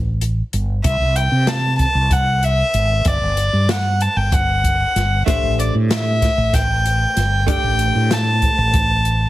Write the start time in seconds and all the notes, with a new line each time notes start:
Already playing: A1
0.21 closed hi-hat
0.53 G1, closed hi-hat
0.84 C2 E5, kick, closed hi-hat
1.00 C2
1.16 G5, closed hi-hat
1.32 C3
1.47 A5, snare, closed hi-hat
1.79 A5, kick, closed hi-hat
1.95 C2
2.11 F#5, kick, closed hi-hat
2.43 E5, closed hi-hat
2.74 G#1, closed hi-hat
3.05 G1 D5, kick, closed hi-hat
3.21 G1
3.37 closed hi-hat
3.53 G2
3.69 F#5, snare, closed hi-hat
4.01 A5, closed hi-hat
4.16 G1 G5
4.32 F#5, kick, closed hi-hat
4.64 kick, closed hi-hat
4.96 G1, snare, closed hi-hat
5.26 A1 A3 D4 G4 C5 E5, kick, closed hi-hat
5.43 A1
5.60 D5, closed hi-hat
5.75 A2
5.91 E5, snare, closed hi-hat
6.22 kick, snare, closed hi-hat
6.38 A1
6.53 G5, kick, snare, closed hi-hat
6.86 closed hi-hat
7.17 G1, snare, closed hi-hat
7.46 A3 D4 G4 D5 G5, kick, closed hi-hat
7.64 A1
7.79 closed hi-hat
7.95 A2
8.11 A5, snare, closed hi-hat
8.42 kick, closed hi-hat
8.58 A1
8.74 kick, closed hi-hat
9.05 closed hi-hat